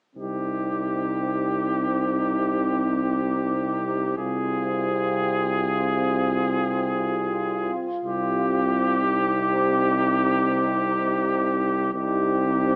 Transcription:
0.16 C2 C3 C4 D#4 G4
4.17 C2 C3 C4 F4 G#4
8.03 C2 C3 C4 G4
9.00 D#4
11.93 C2 C3 C4 D#4 G4

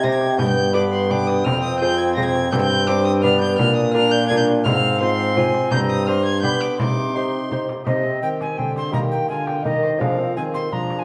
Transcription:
Already playing: C3 G4
0.02 D#4 G4 C5 G5 G#5 A#6, frame drum
0.12 G#6
0.21 frame drum
0.38 G2 B3 G5 G#5 G6, frame drum
0.48 G6
0.72 B3 D4 G4 B4 B5 D6
0.92 C6
1.08 D4 G4 B4 G5 D6, frame drum
1.27 D#6, frame drum
1.44 F2 C4 F6, frame drum
1.62 D#6
1.80 F4 G#4 C5 G6
1.98 G#6
2.15 F4 G#4 C5 A#6, frame drum
2.25 G#6
2.35 frame drum
2.51 G2 C4 G5 G6, frame drum
2.60 G6
2.88 C4 D4 G4 C5 D6
3.05 D#6
3.22 B3 D4 G4 B4 D5 F6, frame drum
3.41 G6, frame drum
3.59 A#2 D4 F6, frame drum
3.76 D#6
3.94 D4 F4 A#4 D5 F6
4.11 G6
4.28 D4 F4 A#4 G#6, frame drum
4.37 G6
4.48 frame drum
4.64 G#2 C4 F5 F6, frame drum
4.72 F6
5.01 C4 F4 C5 C6
5.36 C4 F4 C5 G#5, frame drum
5.54 frame drum
5.71 G2 C4 A#5 G6, frame drum
5.90 D#6
6.07 D4 G4 C5 C6 F6
6.25 G#6
6.42 B3 D4 G4 B4 B5 G6, frame drum
6.61 D6, frame drum
6.78 C3 D#4 C6 D6, frame drum
7.14 D#4 G4 C5 C6
7.51 D#4 G4 C5, frame drum
7.69 frame drum
7.84 C3 D#4 G4 C5 D#5, frame drum
8.05 C4
8.21 D#3 G4 G5
8.41 G#5, frame drum
8.58 D3 C4 G5, frame drum
8.76 C6, frame drum
8.90 D#3 G4 A#4 D#5 A#5, frame drum
8.95 D#3 A#3
9.11 G5
9.29 D3 F4 A#4 G#5
9.46 G5, frame drum
9.62 D#3 D#4 G4 A#4 D#5, frame drum
9.83 C5, frame drum
9.98 F3 C4 D4 F4 G#4 F5, frame drum
10.02 A#4
10.19 C4
10.37 D#3 C4 G#4 G#5
10.54 C6, frame drum
10.72 F3 D4 G#4 A#5, frame drum
10.90 frame drum
10.99 G#5

